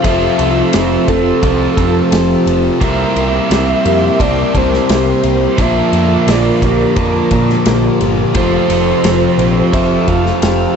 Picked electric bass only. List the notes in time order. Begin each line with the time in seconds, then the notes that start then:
0.05 F1
0.39 C2
0.74 F1
1.08 F1
1.43 C2
1.77 F2
2.12 F1
2.46 F1
2.81 C2
3.16 C2
3.50 C2
3.86 F2
4.20 C2
4.55 C2
4.90 C2
5.24 C2
5.58 A#1
5.93 F2
6.27 A#1
6.62 A#1
6.97 F2
7.32 A#2
7.66 A#1
8.01 G1
8.35 F1
8.69 F1
9.04 F1
9.38 A#1
9.73 F1
10.08 F1
10.42 F1